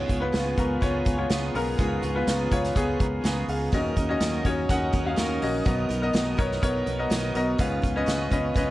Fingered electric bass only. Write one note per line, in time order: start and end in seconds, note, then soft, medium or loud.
0.10 0.30 C#2 medium
0.34 0.54 C#2 medium
0.58 0.78 C#2 medium
0.82 1.02 C#2 medium
1.06 1.26 C#2 medium
1.30 1.50 C#2 loud
1.54 1.75 B1 medium
1.79 1.99 C#2 medium
2.03 2.23 C#2 medium
2.27 2.47 C#2 loud
2.52 2.72 C#2 medium
2.76 2.96 C#2 medium
3.00 3.20 C#2 medium
3.24 3.44 C#2 medium
3.48 3.68 C#2 medium
3.73 3.93 D#2 medium
3.97 4.17 D#2 medium
4.21 4.41 D#2 loud
4.45 4.65 D#2 medium
4.69 4.89 D#2 loud
4.94 5.14 D#2 medium
5.18 5.38 D#2 loud
5.42 5.62 A#1 medium
5.66 5.86 B1 medium
5.90 6.10 B1 medium
6.14 6.34 B1 loud
6.38 6.58 B1 loud
6.63 6.83 B1 loud
6.87 7.07 B1 medium
7.10 7.31 B1 loud
7.35 7.55 B1 medium
7.59 7.79 C#2 loud
7.84 8.04 C#2 medium
8.08 8.28 C#2 loud
8.32 8.52 C#2 loud
8.56 8.70 C#2 loud